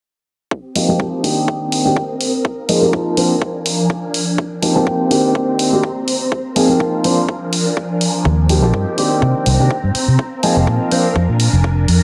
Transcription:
0.51 string machine C4 G4 D#6, kick
0.75 grand piano F3 A#3 C4 D#4 G4, open hi-hat
0.88 grand piano F3 A#3 C4 D#4 G4
0.99 grand piano F3 A#3 G4, kick
1.23 grand piano D#3 A#3 C4 D4 G4, open hi-hat
1.48 string machine C4 A#4, kick
1.72 open hi-hat
1.85 grand piano D#3 A#3 C4 D4 G4
1.96 kick
2.21 open hi-hat
2.45 string machine D#4 F5, kick
2.68 grand piano F3 A#3 C4 D#4 G#4, open hi-hat
2.82 grand piano F3 A#3 C4 D#4 G4
2.93 grand piano F3 A#3 C4 D#4 F4, kick
3.17 grand piano F3 A#3 C4 D4 C5, string machine F3 D4 G#5, open hi-hat
3.42 kick
3.66 open hi-hat
3.90 kick
4.14 open hi-hat
4.38 string machine C4 C5 G5, kick
4.62 grand piano F3 A#3 C4 D#4 G4, open hi-hat
4.75 grand piano F3 A#3 C4 D#4 G4
4.86 grand piano F3 A#3 C4 G4, kick
5.10 grand piano D#3 A#3 C4 D4 G4, open hi-hat
5.35 string machine A#5, kick
5.59 open hi-hat
5.72 grand piano D#3 A#3 C4 D4 G4
5.83 kick
6.08 open hi-hat
6.32 string machine A#4 F5, kick
6.56 grand piano F3 A#3 C4 D#4 G#4, open hi-hat
6.69 grand piano F3 A#3 C4 D#4 G4
6.80 grand piano F3 A#3 C4 D#4, kick
7.04 string machine F3 D4 A#4 G#5, grand piano F3 A#3 C4 D4 C5, open hi-hat
7.29 kick
7.53 open hi-hat
7.77 kick
8.01 open hi-hat
8.25 fingered electric bass D#2, string machine C4 C5 G5, kick, tambourine
8.38 tambourine
8.49 grand piano F3 A#3 C4 D#4 G4, open hi-hat
8.62 fingered electric bass A#1, grand piano F3 A#3 C4 D#4 G4, tambourine
8.73 fingered electric bass G2, grand piano F3 A#3 C4 D#4 G4, kick
8.87 tambourine
8.97 grand piano D#3 A#3 C4 D4 G4, open hi-hat
9.11 tambourine
9.22 fingered electric bass C3, string machine C5 A#5, kick
9.35 tambourine
9.46 fingered electric bass C2, open hi-hat
9.59 fingered electric bass C3, grand piano D#3 A#3 C4 D4 G4, tambourine
9.71 kick
9.83 fingered electric bass G2, tambourine
9.95 muted fingered electric bass stroke, open hi-hat
10.07 fingered electric bass C3, tambourine
10.19 string machine A#4 F5, kick
10.33 tambourine
10.43 grand piano F3 A#3 C4 D#4 G#4, open hi-hat
10.56 fingered electric bass F1, grand piano F3 A#3 C4 D#4 G4, tambourine
10.67 fingered electric bass A#2, grand piano F3 A#3 C4 D#4 F4, kick
10.81 tambourine
10.91 grand piano F3 A#3 C4 D4 C5, string machine D4 G#5, open hi-hat
11.04 tambourine
11.16 fingered electric bass F2, kick
11.29 fingered electric bass A#2, tambourine
11.40 open hi-hat
11.53 fingered electric bass F1, tambourine
11.63 kick, tambourine
11.78 tambourine
11.88 fingered electric bass F2, open hi-hat

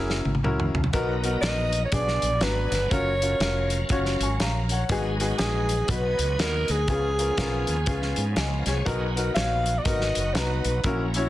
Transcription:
Already playing: fretless electric bass F#1, upright piano C#4 E4 F#4 A#4, alto saxophone G#4
0.10 snare
0.25 fretless electric bass G#1, high tom
0.35 high tom
0.43 fretless electric bass C#2, upright piano C#4 E4 F#4 A#4, mid tom
0.60 mid tom
0.74 fretless electric bass C2, floor tom
0.84 floor tom
0.93 fretless electric bass B1, upright piano B2 B3 D#4 F#4 A#4, tonewheel organ F#3 B3 D#4 A#4, kick, closed hi-hat
1.23 upright piano B3 D#4 F#4 A#4, closed hi-hat
1.41 fretless electric bass A#1, upright piano B3 D#4 F#4 A#4, alto saxophone D#5, snare, closed hi-hat
1.72 closed hi-hat
1.85 alto saxophone C#5
1.92 fretless electric bass B1, upright piano B2 B3 D4 F#4 G#4, tonewheel organ F#3 B3 C#4 G#4, alto saxophone D5, kick, closed hi-hat
1.98 tonewheel organ D4
2.08 snare
2.22 fretless electric bass A#1, closed hi-hat
2.41 fretless electric bass G#1, upright piano B3 D4 F#4 A#5, alto saxophone B4, snare, closed hi-hat
2.72 fretless electric bass G1, snare, closed hi-hat
2.88 fretless electric bass F#1, tonewheel organ F#3 C#4 A#4 F5, upright piano C#4 F4 F#4 A#4, alto saxophone C#5, kick, closed hi-hat
3.22 upright piano C#4 F4 F#4 A#4, closed hi-hat
3.40 fretless electric bass F1, upright piano C#4 F4 F#4 A#4, snare, closed hi-hat
3.70 closed hi-hat
3.89 fretless electric bass F#1, upright piano C#4 F4 F#4 C#5, kick, closed hi-hat
4.06 snare
4.20 fretless electric bass G#1, upright piano G#5 C#6, closed hi-hat
4.40 fretless electric bass A#1, upright piano F5 A#5, snare, closed hi-hat
4.69 upright piano C#5 F#5, closed hi-hat
4.89 fretless electric bass G#1, upright piano G#2 B3 D#4 F#4 G#4, tonewheel organ F#3 B3 D#4 G#4, kick, closed hi-hat
5.20 upright piano B3 D#4 F#4 G#4, closed hi-hat
5.38 fretless electric bass A#1, upright piano B3 D#4 F#4 G#4, alto saxophone G#4, snare, closed hi-hat
5.69 closed hi-hat
5.88 fretless electric bass B1, upright piano B3 D#4 F#4 B4, alto saxophone B4, kick, closed hi-hat
6.19 fretless electric bass C#2, closed hi-hat
6.38 fretless electric bass D#2, upright piano B3 D#4 F#4 B4, alto saxophone A#4, snare, closed hi-hat
6.68 fretless electric bass D2, alto saxophone G#4, closed hi-hat
6.87 fretless electric bass C#2, upright piano C#3 B3 C#4 F4 G#4, tonewheel organ F3 B3 C#4 G4, kick, closed hi-hat
6.94 tonewheel organ G#4
7.18 upright piano B3 C#4 F4 A#4, closed hi-hat
7.38 fretless electric bass B1, upright piano B3 C#4 F4 A#4, kick, snare, closed hi-hat
7.67 fretless electric bass D#2, closed hi-hat
7.86 upright piano B3 C#4 F4 G#4, kick, closed hi-hat
8.02 snare
8.16 fretless electric bass G#2, closed hi-hat
8.36 fretless electric bass C#2, tonewheel organ A#4 F5, upright piano D#5 G#5, snare, closed hi-hat
8.66 fretless electric bass C2, tonewheel organ G#4 C#5, upright piano G#4 C#5, snare, closed hi-hat
8.85 upright piano B2 B3 D#4 F#4 A#4, tonewheel organ F#3 B3 D4 F#4, kick, closed hi-hat
8.92 tonewheel organ D#4
9.16 upright piano B3 D#4 F#4 A#4, closed hi-hat
9.35 fretless electric bass A#1, upright piano B3 D#4 F#4 C#5, alto saxophone F5, snare, closed hi-hat
9.66 closed hi-hat
9.78 alto saxophone D5
9.83 fretless electric bass G#1, upright piano B3 D#4 F#4 A#4, alto saxophone D#5, kick, closed hi-hat
10.01 snare
10.15 fretless electric bass F#1, closed hi-hat
10.34 fretless electric bass C2, upright piano B3 D#4 F#4 A#5, alto saxophone B4, snare, closed hi-hat
10.65 fretless electric bass B1, closed hi-hat
10.84 fretless electric bass A#1, upright piano A#2 C#4 E4 F#4 A#4, tonewheel organ F#3 C#4 E4 A#4, kick, closed hi-hat
11.14 upright piano C#4 E4 F#4 C#5, closed hi-hat

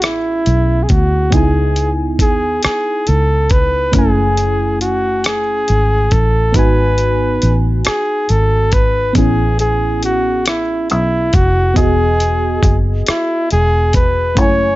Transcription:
Already playing: fingered electric bass A1, fm electric piano B3 C#4 E4 G#4
0.02 flugelhorn E4, cross-stick, closed hi-hat
0.46 fingered electric bass B1, closed hi-hat
0.83 flugelhorn G#4
0.89 fingered electric bass D2, flugelhorn F#4, kick, closed hi-hat
1.30 fingered electric bass C#2, fm electric piano B3 D#4, flugelhorn G#4, kick, closed hi-hat
1.35 fm electric piano E4 G#5
1.76 closed hi-hat
2.19 fingered electric bass D#2, flugelhorn G#4, kick, closed hi-hat
2.63 flugelhorn G#4, muted fingered electric bass stroke, cross-stick, closed hi-hat
3.07 fingered electric bass C#2, flugelhorn A4, closed hi-hat
3.50 flugelhorn B4, kick, closed hi-hat
3.92 fingered electric bass F#1, fm electric piano A3 C#4, flugelhorn G#4, kick, closed hi-hat
3.96 fm electric piano E4 G#5
4.37 closed hi-hat
4.81 flugelhorn F#4, closed hi-hat
5.24 flugelhorn G#4, cross-stick, closed hi-hat
5.68 fingered electric bass G#1, closed hi-hat
6.11 fingered electric bass A1, flugelhorn A4, kick, closed hi-hat
6.52 fingered electric bass G#1, fm electric piano B3 D#4, flugelhorn B4, kick, closed hi-hat
6.57 fm electric piano F#4 G#5
6.98 closed hi-hat
7.42 fingered electric bass A1, closed hi-hat
7.85 flugelhorn G#4, cross-stick, closed hi-hat
8.29 fingered electric bass G#1, flugelhorn A4, closed hi-hat
8.72 flugelhorn B4, kick, closed hi-hat
9.13 fingered electric bass A1, fm electric piano B3 C#4, flugelhorn G#4, kick, closed hi-hat
9.18 fm electric piano E4 G#4
9.59 flugelhorn G#4, closed hi-hat
10.03 flugelhorn F#4, closed hi-hat
10.46 flugelhorn E4, cross-stick, closed hi-hat
10.90 fingered electric bass B1, flugelhorn E4, closed hi-hat
11.33 fingered electric bass F1, flugelhorn F#4, kick, closed hi-hat
11.74 fingered electric bass E1, fm electric piano B3 D#5, flugelhorn G#4, kick, closed hi-hat
11.79 fm electric piano F#4 G#4
12.20 closed hi-hat
12.63 fingered electric bass F#1, kick, closed hi-hat
13.07 flugelhorn E4, muted fingered electric bass stroke, cross-stick, closed hi-hat
13.51 fingered electric bass E1, flugelhorn G#4, closed hi-hat
13.93 flugelhorn B4, kick, closed hi-hat
14.35 fingered electric bass F#1, fm electric piano A3 C#4, flugelhorn C#5, kick, closed hi-hat
14.40 fm electric piano E4 G#5

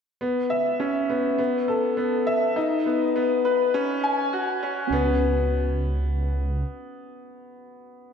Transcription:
0.21 grand piano B3
0.50 detuned saw bass C#2, grand piano E5
0.80 grand piano C#4
1.09 detuned saw bass C#2, grand piano B3
1.39 grand piano B3
1.68 detuned saw bass A1, grand piano A4
1.97 grand piano B3
2.27 detuned saw bass A2, grand piano E5
2.42 detuned saw bass B1
2.56 grand piano D#4
2.86 detuned saw bass B1, grand piano B3
3.16 grand piano B3
3.45 grand piano B4
3.74 grand piano C#4
4.03 detuned saw bass F#1, grand piano G#5
4.33 grand piano F#4
4.62 detuned saw bass F#2, grand piano C#4
4.92 detuned saw bass C#2, grand piano B3

